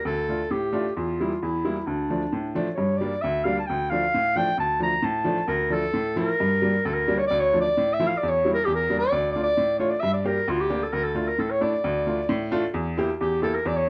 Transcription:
0.05 0.39 D2 medium
0.05 0.53 A4 medium
0.29 0.40 A3 soft
0.29 0.40 D4 soft
0.29 0.40 F4 medium
0.51 0.84 A2 medium
0.51 0.95 G4 medium
0.73 0.84 A3 medium
0.73 0.85 D4 medium
0.73 0.85 F4 medium
0.96 1.30 E2 medium
0.96 1.38 F4 medium
1.20 1.31 G3 medium
1.20 1.31 A#3 soft
1.20 1.31 E4 medium
1.42 1.76 E2 medium
1.42 1.88 E4 medium
1.65 1.76 G3 medium
1.65 1.76 A#3 medium
1.65 1.76 E4 medium
1.87 2.21 D2 medium
1.87 2.54 D4 medium
2.10 2.21 F3 medium
2.10 2.21 A3 soft
2.10 2.21 D4 medium
2.33 2.66 A2 medium
2.55 2.66 F3 medium
2.55 2.66 A3 medium
2.55 2.66 D4 medium
2.74 3.11 G2 medium
2.74 2.99 C#5 medium
2.97 3.12 G3 medium
2.97 3.23 D5 medium
3.01 3.12 A#3 medium
3.01 3.12 D4 medium
3.22 3.57 D2 medium
3.22 3.46 E5 medium
3.44 3.56 G3 medium
3.44 3.57 A#3 medium
3.44 3.57 D4 medium
3.44 3.59 F5 medium
3.59 3.68 A5 medium
3.67 4.02 D2 medium
3.67 3.91 G5 medium
3.90 4.02 F3 medium
3.90 4.02 A3 soft
3.90 4.03 D4 medium
3.90 4.38 F5 medium
4.14 4.47 A2 medium
4.36 4.47 F3 medium
4.36 4.47 A3 medium
4.36 4.47 D4 medium
4.36 4.59 G5 loud
4.58 4.92 D2 medium
4.58 4.80 A5 medium
4.80 4.92 F3 medium
4.80 4.92 A3 soft
4.80 4.92 D4 medium
4.80 5.06 A#5 medium
5.02 5.36 A2 medium
5.02 5.47 A5 medium
5.24 5.36 F3 medium
5.24 5.37 A3 medium
5.24 5.37 D4 medium
5.48 5.82 D2 medium
5.48 5.74 A#4 medium
5.70 5.82 F3 soft
5.70 5.82 A3 soft
5.70 5.82 D4 medium
5.70 6.17 A4 loud
5.94 6.27 A2 medium
6.16 6.27 F3 medium
6.16 6.28 A3 medium
6.16 6.28 E4 medium
6.16 6.87 A#4 loud
6.40 6.73 G2 medium
6.62 6.73 G3 medium
6.62 6.74 A#3 soft
6.62 6.73 D4 medium
6.85 7.18 D2 medium
6.85 6.95 A4 medium
6.94 7.20 A#4 medium
7.08 7.19 G3 medium
7.08 7.19 A#3 medium
7.08 7.19 D4 medium
7.18 7.26 C#5 medium
7.27 7.64 D2 medium
7.27 7.41 D5 loud
7.40 7.60 C#5 medium
7.53 7.64 F3 medium
7.53 7.64 A3 medium
7.53 7.64 D4 medium
7.60 7.95 D5 medium
7.77 8.10 A2 medium
7.94 8.09 E5 medium
8.00 8.10 F3 medium
8.00 8.10 A3 medium
8.00 8.10 E4 medium
8.07 8.19 F5 medium
8.18 8.30 D5 loud
8.23 8.55 E2 medium
8.28 8.53 C#5 medium
8.45 8.55 G3 medium
8.45 8.55 A#3 medium
8.45 8.56 E4 medium
8.54 8.66 A#4 loud
8.65 9.00 E2 medium
8.65 8.74 G4 medium
8.75 8.97 A#4 medium
8.90 9.00 G3 medium
8.90 9.00 A#3 medium
8.90 9.00 D4 medium
8.99 9.31 D5 medium
9.12 9.45 D2 medium
9.32 9.46 A3 soft
9.32 9.46 D4 medium
9.32 9.46 F4 medium
9.32 9.43 D5 medium
9.43 9.75 D5 loud
9.57 9.90 A2 medium
9.79 9.90 A3 medium
9.79 9.91 D4 medium
9.79 9.91 F4 medium
9.79 9.91 C#5 medium
9.90 10.02 D5 medium
10.00 10.36 G2 medium
10.00 10.12 E5 loud
10.14 10.28 D5 medium
10.24 10.35 A#3 medium
10.24 10.36 D4 medium
10.24 10.36 G4 medium
10.24 10.51 A#4 medium
10.48 10.81 D2 medium
10.48 10.62 F4 medium
10.60 10.85 G4 medium
10.70 10.81 A#3 medium
10.70 10.81 D4 medium
10.70 10.81 G4 medium
10.83 10.95 A4 medium
10.93 11.26 D2 medium
10.93 11.05 A#4 loud
11.04 11.30 A4 medium
11.15 11.26 A3 medium
11.15 11.26 D4 soft
11.15 11.26 F4 medium
11.28 11.41 A#4 medium
11.39 11.72 A2 medium
11.39 11.52 A4 medium
11.51 11.63 C#5 medium
11.61 11.72 A3 medium
11.61 11.72 D4 medium
11.61 11.72 E4 medium
11.61 12.52 D5 medium
11.84 12.17 D2 medium
12.07 12.18 A3 medium
12.07 12.18 D4 medium
12.07 12.18 F4 medium
12.29 12.63 A2 medium
12.51 12.63 A3 medium
12.51 12.63 D4 medium
12.51 12.63 F4 medium
12.74 13.08 E2 medium
12.97 13.08 A#3 medium
12.97 13.09 E4 medium
12.97 13.09 G4 medium
13.21 13.54 E2 medium
13.21 13.41 G4 medium
13.42 13.54 A#3 medium
13.42 13.54 E4 medium
13.42 13.54 G4 medium
13.42 13.56 A4 medium
13.55 13.69 A#4 medium
13.65 13.89 E2 medium
13.65 13.78 D5 medium
13.76 13.89 C#5 medium

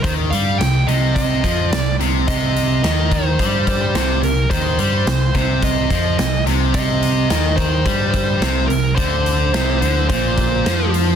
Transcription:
0.03 0.30 D#2 loud
0.03 0.32 D#3 medium
0.03 0.11 C5 medium
0.03 kick loud
0.03 closed hi-hat medium
0.30 0.58 G2 medium
0.30 0.59 G3 loud
0.30 0.60 F5 medium
0.30 closed hi-hat medium
0.58 0.86 C2 medium
0.58 0.82 C3 medium
0.58 0.88 G5 loud
0.58 snare loud
0.58 closed hi-hat medium
0.87 1.40 C2 medium
0.87 1.43 C3 medium
0.87 1.14 D#5 medium
0.87 closed hi-hat medium
1.15 1.70 D#5 medium
1.15 kick medium
1.15 closed hi-hat medium
1.44 1.70 F2 medium
1.44 1.71 F3 medium
1.44 kick medium
1.44 closed hi-hat medium
1.70 1.98 C2 medium
1.70 1.94 C3 medium
1.70 1.95 D5 medium
1.70 snare loud
1.70 closed hi-hat medium
1.99 2.25 C2 medium
1.99 2.27 C3 loud
1.99 closed hi-hat medium
2.28 2.80 C2 medium
2.28 2.83 C3 loud
2.28 3.14 D#5 loud
2.28 kick loud
2.28 closed hi-hat medium
2.56 closed hi-hat medium
2.82 3.35 D#2 medium
2.82 3.38 D#3 medium
2.82 snare loud
2.82 closed hi-hat medium
3.11 3.64 C5 medium
3.11 kick medium
3.11 closed hi-hat medium
3.39 3.91 G2 medium
3.39 3.94 G3 medium
3.39 kick loud
3.39 closed hi-hat medium
3.67 4.20 C5 medium
3.67 kick medium
3.67 closed hi-hat medium
3.95 4.21 C2 medium
3.95 4.22 C3 medium
3.95 snare loud
3.95 closed hi-hat medium
4.22 4.49 C2 medium
4.22 4.45 C3 medium
4.22 4.50 A#4 medium
4.22 closed hi-hat medium
4.51 4.77 D#2 medium
4.51 4.78 D#3 loud
4.51 4.79 C5 medium
4.51 kick loud
4.51 closed hi-hat medium
4.78 5.04 G2 medium
4.78 5.06 G3 medium
4.78 5.07 C5 medium
4.78 closed hi-hat medium
5.06 5.32 C2 medium
5.06 5.29 C3 medium
5.06 5.35 C5 medium
5.06 snare loud
5.06 closed hi-hat medium
5.35 5.86 C2 medium
5.35 5.90 C3 medium
5.35 5.61 C5 medium
5.35 kick medium
5.35 closed hi-hat medium
5.62 6.43 D#5 medium
5.62 kick medium
5.62 closed hi-hat medium
5.90 6.16 F2 medium
5.90 6.18 F3 medium
5.90 kick medium
5.90 closed hi-hat medium
6.18 6.44 C2 medium
6.18 6.41 C3 medium
6.18 snare loud
6.18 closed hi-hat medium
6.46 6.72 C2 loud
6.46 6.72 C3 loud
6.46 closed hi-hat medium
6.73 7.26 C2 medium
6.73 7.29 C3 loud
6.73 7.61 D#5 loud
6.73 kick loud
6.73 closed hi-hat loud
7.02 closed hi-hat medium
7.29 7.82 D#2 medium
7.29 7.85 D#3 medium
7.29 snare loud
7.29 closed hi-hat medium
7.56 8.10 C5 medium
7.56 kick medium
7.56 closed hi-hat medium
7.85 8.38 G2 medium
7.85 8.41 G3 medium
7.85 kick loud
7.85 closed hi-hat medium
8.11 8.64 C5 medium
8.11 kick medium
8.11 closed hi-hat medium
8.41 8.68 C2 medium
8.41 8.68 C3 medium
8.41 snare loud
8.41 closed hi-hat medium
8.67 8.95 C2 medium
8.67 8.92 C3 medium
8.67 8.95 A#4 medium
8.67 closed hi-hat medium
8.95 9.49 D2 medium
8.95 9.52 D3 loud
8.95 10.08 C5 medium
8.95 kick loud
8.95 closed hi-hat medium
9.26 closed hi-hat medium
9.53 9.80 C2 medium
9.53 9.81 C3 medium
9.53 snare loud
9.53 closed hi-hat medium
9.81 10.07 D2 medium
9.81 10.08 D3 medium
9.81 closed hi-hat medium
10.09 10.62 A#1 medium
10.09 10.64 A#2 medium
10.09 10.89 C5 medium
10.09 kick medium
10.09 closed hi-hat medium
10.37 kick medium
10.37 closed hi-hat medium
10.65 11.15 F2 medium
10.65 11.15 F3 medium
10.65 snare loud
10.65 closed hi-hat medium
10.94 closed hi-hat medium

